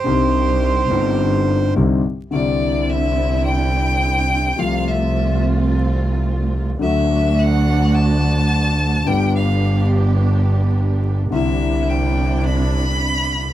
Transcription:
<<
  \new Staff \with { instrumentName = "Violin" } { \time 4/4 \key c \minor \tempo 4 = 106 g'2. r4 | \key c \major d''4 e''4 g''2 | f''8 e''4 r2 r8 | e''4 fis''4 a''2 |
g''8 f''4 r2 r8 | e''4 g''4 b''2 | }
  \new Staff \with { instrumentName = "Bandoneon" } { \time 4/4 \key c \minor c''2. r4 | \key c \major r1 | r1 | r1 |
r1 | r1 | }
  \new Staff \with { instrumentName = "String section" } { \time 4/4 \key c \minor r1 | \key c \major <c' d' e'>1 | <a c' f'>1 | <a d' fis'>1 |
<b d' g'>1 | <c' d' e'>1 | }
  \new Staff \with { instrumentName = "Grand piano" } { \clef bass \time 4/4 \key c \minor <c, c g c' d' ees'>4. <g,, g, g c' d' ees'>4. <c, c d g c' ees'>8 r8 | \key c \major <c, c d g c' e'>1 | <c, c f a f'>1 | <d, d fis a fis'>1 |
<g,, g, d g b g'>1 | <c, c d g c' e'>1 | }
  \new Staff \with { instrumentName = "Double bass" } { \clef bass \time 4/4 \key c \minor c,4. g,,4. c,8 r8 | \key c \major c,1 | c,1 | d,1 |
g,,1 | c,1 | }
>>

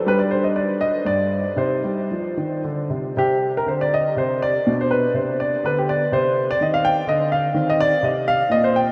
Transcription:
<<
  \new Staff \with { instrumentName = "Grand piano" } { \time 3/4 \key c \minor \tempo 4 = 122 << { b'16 d''16 c''16 ees''16 d''8 ees''8 d''4 | c''2 r4 | g'8. bes'16 c''16 d''16 ees''8 c''8 d''8~ | d''16 c''16 b'8 c''8 d''8 b'16 g'16 d''8 |
c''8. d''16 ees''16 f''16 g''8 ees''8 f''8~ | f''16 ees''16 d''8 ees''8 f''8 ees''16 c''16 g''8 | } \\ { d'2 r4 | ees'2. | c'2. | d'2. |
c'2. | c'2. | } >> }
  \new Staff \with { instrumentName = "Grand piano" } { \clef bass \time 3/4 \key c \minor g2 g,4 | c8 g8 f8 ees8 d8 c8 | c4 d4 c4 | b,4 c4 d4 |
c4 ees4 d4 | ees4 c4 bes,4 | }
>>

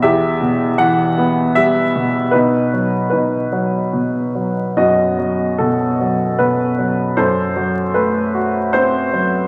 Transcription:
<<
  \new Staff \with { instrumentName = "Upright piano" } { \time 3/4 \key b \phrygian \tempo 4 = 76 << { e''4 fis''4 e''4 | b'4 b'4. r8 | dis''4 a'4 b'4 | c''4 b'4 c''4 | } \\ { g'4. r4. | dis'4 dis'4. r8 | fis'4. r4. | a'4. r4. | } >> }
  \new Staff \with { instrumentName = "Upright piano" } { \clef bass \time 3/4 \key b \phrygian e,8 b,8 e8 b8 g8 b,8 | b,8 fis8 b,8 fis8 b,8 fis8 | fis,8 fis8 b,8 fis8 b,8 fis8 | fis,8 fis8 a8 fis'8 c'8 fis8 | }
>>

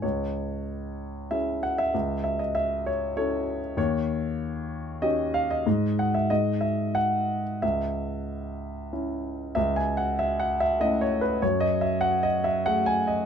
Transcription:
\new Staff \with { instrumentName = "Grand piano" } { \time 3/4 \key cis \minor \tempo 4 = 95 << { cis''2 e''8 fis''16 e''16~ | e''8 e''16 dis''16 e''8 cis''8 cis''8. r16 | cis''2 dis''8 eis''16 dis''16~ | dis''8 fis''16 e''16 dis''8 e''8 fis''8. r16 |
e''2. | \tuplet 3/2 { e''8 gis''8 fis''8 e''8 fis''8 e''8 dis''8 cis''8 b'8 } | \tuplet 3/2 { cis''8 dis''8 e''8 fis''8 dis''8 e''8 fis''8 gis''8 dis''8 } | } \\ { cis,2 <cis' e' gis'>4 | cis,2 <cis' e' a'>4 | dis,2 <cis' dis' g'>4 | gis,4 gis,2 |
cis,2 <cis' e'>4 | cis,2 <a cis' e'>4 | fis,2 <a fis' gis'>4 | } >> }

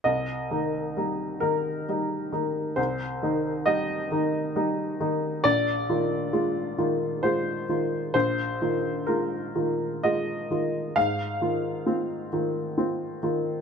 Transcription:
<<
  \new Staff \with { instrumentName = "Upright piano" } { \time 3/4 \key c \minor \tempo 4 = 66 ees''4. bes'4. | c''4 ees''4. r8 | d''2 c''4 | c''4 bes'4 ees''4 |
f''2. | }
  \new Staff \with { instrumentName = "Upright piano" } { \clef bass \time 3/4 \key c \minor c,8 <ees ees'>8 <g ees'>8 <ees ees'>8 <g ees'>8 <ees ees'>8 | c,8 <ees ees'>8 <g ees'>8 <ees ees'>8 <g ees'>8 <ees ees'>8 | bes,,8 <ees f'>8 <aes f'>8 <ees f'>8 <aes f'>8 <ees f'>8 | bes,,8 <ees f'>8 <aes f'>8 <ees f'>8 <aes f'>8 <ees f'>8 |
aes,8 <ees f'>8 <c' f'>8 <ees f'>8 <c' f'>8 <ees f'>8 | }
>>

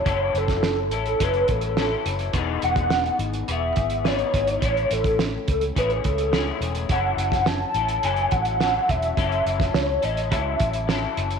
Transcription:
<<
  \new Staff \with { instrumentName = "Soft synth lead" } { \time 4/4 \key fis \dorian \tempo 4 = 105 cis''8 a'4 a'8 b'8 a'4 r8 | r8 fis''4 r8 e''4 cis''4 | cis''8 a'4 a'8 b'8 a'4 r8 | fis''8 fis''8 a''4 gis''8 fis''4 e''8~ |
e''4 cis''8 dis''8 e''4. r8 | }
  \new Staff \with { instrumentName = "Clean electric guitar" } { \time 4/4 \key fis \dorian <fis cis' e' a'>4. <cis' e' a'>8 <fis cis' e' a'>4 <fis cis' e' a'>4 | <e b dis' gis'>2 <e b gis'>4 <e b dis' gis'>4 | <a cis' e'>2 <a cis' e' gis'>4 <a cis' e' gis'>4 | <fis cis' e' a'>4. <cis' e' a'>8 <fis cis' e' a'>4 <fis cis' e' a'>4 |
<fis cis' e' a'>4. <cis' e' a'>8 <fis cis' e' a'>4 <fis cis' e' a'>4 | }
  \new Staff \with { instrumentName = "Fingered electric bass" } { \clef bass \time 4/4 \key fis \dorian fis,,8 fis,,4 a,,8 fis,,8 a,,4 fis,,8 | e,,8 e,,4 gis,,8 e,,8 gis,,4 gis,,8 | a,,8 a,,4 cis,8 a,,8 cis,4 e,,8 | fis,,8 fis,,4 a,,8 fis,,8 a,,4 e,,8 |
fis,,8 fis,,8 cis,8 a,,8 cis,8 a,,4 fis,,8 | }
  \new DrumStaff \with { instrumentName = "Drums" } \drummode { \time 4/4 <hh bd>8 hh16 <hh bd sn>16 sn8 hh16 hh16 <hh bd>16 hh16 <hh bd>16 hh16 sn8 hh16 hh16 | <hh bd>8 hh16 <hh bd>16 sn16 hh16 hh16 hh16 hh8 <hh bd>16 hh16 sn16 hh16 <hh bd>16 hh16 | <hh bd>16 hh16 hh16 <hh bd>16 sn8 <hh bd>16 hh16 <hh bd>16 hh16 <hh bd>16 hh16 sn8 hh16 hh16 | <hh bd>8 hh16 <hh bd sn>16 sn8 hh16 hh16 hh16 hh16 <hh bd>16 hh16 sn8 <hh bd>16 hh16 |
<hh bd>16 hh16 hh16 <hh bd sn>16 sn8 hh16 hh16 <hh bd>8 <hh bd>16 hh16 sn8 hh16 hh16 | }
>>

